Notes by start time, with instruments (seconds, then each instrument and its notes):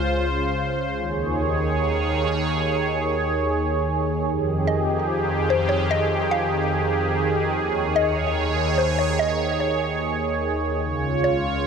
Already playing: analog synth pad C#2 C#3 F4 C5
0.97 analog synth pad D#2 D#3 G#4 C#5
4.26 analog synth pad F2 D#3 G4 G#4
4.67 synth pluck D#5
5.50 synth pluck C5
5.69 synth pluck C#5
5.91 synth pluck D#5
6.31 synth pluck F5
7.55 analog synth pad D#2 C#5
7.96 synth pluck D#5
8.78 synth pluck C5
8.99 synth pluck C#5
9.19 synth pluck D#5
9.60 synth pluck C#5
10.83 analog synth pad C#2 C#3 F4 C#5
11.24 synth pluck C#5